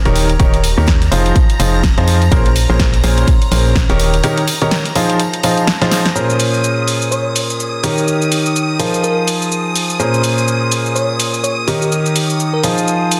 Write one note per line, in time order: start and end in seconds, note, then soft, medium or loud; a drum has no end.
0.00 6.17 A#5 medium
0.05 0.38 D#1 loud
0.05 0.28 D#3 medium
0.05 0.28 D#4 medium
0.05 0.28 G4 medium
0.05 0.28 A#4 medium
0.05 0.28 C#5 loud
0.05 closed hi-hat soft
0.05 tambourine soft
0.16 open hi-hat medium
0.16 tambourine medium
0.29 closed hi-hat soft
0.29 tambourine soft
0.39 0.75 D#1 medium
0.39 0.55 D#3 medium
0.39 0.55 D#4 medium
0.39 0.55 G4 medium
0.39 0.55 A#4 medium
0.39 0.55 C#5 loud
0.39 kick loud
0.39 closed hi-hat medium
0.39 tambourine soft
0.54 closed hi-hat medium
0.54 tambourine soft
0.64 open hi-hat medium
0.64 tambourine medium
0.77 1.10 D#2 loud
0.77 0.90 D#3 medium
0.77 0.90 D#4 medium
0.77 0.90 G4 medium
0.77 0.90 A#4 medium
0.77 0.90 C#5 medium
0.77 tambourine soft
0.87 kick loud
0.87 snare loud
0.87 closed hi-hat medium
0.87 tambourine medium
1.02 closed hi-hat soft
1.02 tambourine soft
1.11 1.33 F1 medium
1.11 1.35 F3 medium
1.11 1.35 D#4 medium
1.11 1.35 F4 medium
1.11 1.35 G#4 medium
1.11 1.35 C5 loud
1.11 open hi-hat medium
1.11 tambourine medium
1.25 closed hi-hat soft
1.25 tambourine soft
1.35 kick loud
1.35 closed hi-hat medium
1.35 tambourine soft
1.49 closed hi-hat medium
1.49 tambourine soft
1.59 1.95 F1 loud
1.59 1.83 F3 medium
1.59 1.83 D#4 medium
1.59 1.83 F4 medium
1.59 1.83 G#4 medium
1.59 1.83 C5 medium
1.59 open hi-hat loud
1.59 tambourine medium
1.73 tambourine soft
1.83 kick loud
1.83 snare loud
1.83 closed hi-hat medium
1.83 tambourine medium
1.98 2.30 F2 loud
1.98 2.20 F3 medium
1.98 2.20 D#4 medium
1.98 2.20 F4 medium
1.98 2.20 G#4 medium
1.98 2.20 C5 loud
1.98 closed hi-hat soft
1.98 tambourine soft
2.07 open hi-hat medium
2.07 tambourine medium
2.22 closed hi-hat soft
2.22 tambourine soft
2.31 2.67 A#1 medium
2.31 2.48 A#2 loud
2.31 2.48 C#4 medium
2.31 2.48 G#4 medium
2.31 2.48 A#4 medium
2.31 2.47 C5 loud
2.31 kick loud
2.31 closed hi-hat medium
2.31 tambourine soft
2.45 closed hi-hat medium
2.45 tambourine soft
2.56 open hi-hat loud
2.56 tambourine medium
2.70 3.02 A#1 loud
2.70 2.82 A#2 medium
2.70 2.82 C#4 medium
2.70 2.82 G#4 medium
2.70 2.82 A#4 medium
2.70 2.82 C5 medium
2.70 tambourine soft
2.79 kick loud
2.79 snare loud
2.79 closed hi-hat medium
2.79 tambourine soft
2.94 closed hi-hat medium
2.94 tambourine soft
3.03 3.25 A#1 loud
3.03 3.27 A#2 medium
3.03 3.27 C#4 medium
3.03 3.27 G#4 medium
3.03 3.27 A#4 medium
3.03 3.27 C5 loud
3.03 open hi-hat medium
3.03 tambourine medium
3.17 closed hi-hat soft
3.17 tambourine soft
3.27 kick loud
3.27 closed hi-hat medium
3.27 tambourine soft
3.42 closed hi-hat medium
3.42 tambourine soft
3.51 3.87 A#1 loud
3.51 3.75 A#2 medium
3.51 3.75 C#4 medium
3.51 3.75 G#4 medium
3.51 3.75 A#4 medium
3.51 3.75 C5 medium
3.51 open hi-hat loud
3.51 tambourine medium
3.65 tambourine soft
3.76 kick loud
3.76 snare loud
3.76 closed hi-hat medium
3.76 tambourine medium
3.89 4.22 D#1 loud
3.89 4.12 D#3 loud
3.89 4.12 D#4 medium
3.89 4.12 G4 medium
3.89 4.12 A#4 medium
3.89 4.12 C#5 loud
3.89 closed hi-hat medium
3.89 tambourine soft
3.99 open hi-hat medium
3.99 tambourine medium
4.13 closed hi-hat soft
4.13 tambourine soft
4.24 4.39 D#3 loud
4.24 4.40 D#4 medium
4.24 4.40 G4 medium
4.24 4.40 A#4 medium
4.24 4.40 C#5 loud
4.24 closed hi-hat medium
4.24 tambourine soft
4.37 closed hi-hat medium
4.37 tambourine soft
4.48 open hi-hat loud
4.48 tambourine medium
4.62 4.74 D#3 medium
4.62 4.74 D#4 medium
4.62 4.74 G4 medium
4.62 4.74 A#4 medium
4.62 4.74 C#5 loud
4.62 closed hi-hat soft
4.71 snare loud
4.71 closed hi-hat medium
4.71 tambourine soft
4.85 closed hi-hat medium
4.85 tambourine soft
4.95 5.19 F3 medium
4.95 5.19 D#4 medium
4.95 5.19 F4 medium
4.95 5.19 G#4 medium
4.95 5.19 C5 loud
4.95 open hi-hat medium
4.95 tambourine medium
5.10 closed hi-hat soft
5.10 tambourine soft
5.19 closed hi-hat medium
5.19 tambourine medium
5.33 closed hi-hat medium
5.33 tambourine soft
5.43 5.67 F3 medium
5.43 5.67 D#4 medium
5.43 5.67 F4 medium
5.43 5.67 G#4 medium
5.43 5.67 C5 medium
5.43 open hi-hat loud
5.43 tambourine medium
5.57 closed hi-hat soft
5.57 tambourine soft
5.67 snare loud
5.67 closed hi-hat medium
5.67 tambourine soft
5.82 6.04 F3 loud
5.82 6.04 D#4 medium
5.82 6.04 F4 medium
5.82 6.04 G#4 medium
5.82 6.04 C5 loud
5.82 snare soft
5.82 closed hi-hat medium
5.82 tambourine soft
5.91 snare medium
5.91 open hi-hat medium
5.91 tambourine medium
6.06 snare medium
6.06 closed hi-hat soft
6.06 tambourine soft
6.15 7.81 A#2 medium
6.15 7.81 C#4 medium
6.15 7.81 G#4 medium
6.15 7.81 A#4 medium
6.15 7.81 C5 medium
6.15 13.20 D#6 medium
6.15 cabasa soft
6.30 cabasa soft
6.40 open hi-hat medium
6.40 cabasa medium
6.54 cabasa soft
6.64 cabasa soft
6.88 open hi-hat medium
6.88 cabasa medium
7.02 cabasa soft
7.12 7.27 C#5 medium
7.12 cabasa soft
7.36 open hi-hat medium
7.36 cabasa medium
7.50 cabasa soft
7.60 cabasa soft
7.83 8.77 D#3 medium
7.83 8.77 D#4 medium
7.83 8.77 G4 medium
7.83 8.77 A#4 medium
7.83 8.77 C#5 medium
7.83 open hi-hat medium
7.83 cabasa medium
7.98 cabasa soft
8.08 cabasa soft
8.22 cabasa soft
8.32 open hi-hat loud
8.32 cabasa medium
8.46 cabasa soft
8.56 cabasa soft
8.79 9.97 F3 medium
8.79 9.97 D#4 medium
8.79 9.97 F4 medium
8.79 9.97 G#4 medium
8.79 9.02 A#4 medium
8.79 9.97 C5 medium
8.79 open hi-hat medium
8.79 cabasa medium
8.94 cabasa soft
9.03 9.52 A#4 medium
9.03 cabasa soft
9.28 open hi-hat loud
9.28 cabasa medium
9.42 cabasa soft
9.52 cabasa soft
9.76 open hi-hat medium
9.76 cabasa medium
9.90 cabasa soft
10.00 11.65 A#2 medium
10.00 11.65 C#4 medium
10.00 11.65 G#4 medium
10.00 11.65 A#4 medium
10.00 11.65 C5 medium
10.00 cabasa soft
10.14 cabasa soft
10.24 open hi-hat loud
10.24 cabasa medium
10.38 cabasa soft
10.48 cabasa soft
10.72 open hi-hat medium
10.72 cabasa medium
10.86 cabasa soft
10.96 11.11 C#5 medium
10.96 cabasa soft
11.20 open hi-hat loud
11.20 cabasa medium
11.34 cabasa soft
11.44 11.59 C#5 medium
11.44 cabasa soft
11.67 12.61 D#3 medium
11.67 12.61 D#4 medium
11.67 11.76 G4 medium
11.67 12.61 G4 medium
11.67 12.61 A#4 medium
11.67 12.61 C#5 medium
11.67 open hi-hat medium
11.67 cabasa medium
11.81 11.88 G4 medium
11.81 cabasa soft
11.92 cabasa soft
12.06 cabasa soft
12.16 open hi-hat loud
12.16 cabasa medium
12.30 cabasa soft
12.40 cabasa soft
12.53 12.69 A#4 medium
12.64 13.20 F3 medium
12.64 13.20 D#4 medium
12.64 13.20 F4 medium
12.64 13.20 G#4 medium
12.64 13.20 C5 medium
12.64 open hi-hat medium
12.64 cabasa medium
12.78 cabasa soft
12.88 cabasa soft
13.11 open hi-hat loud
13.11 cabasa medium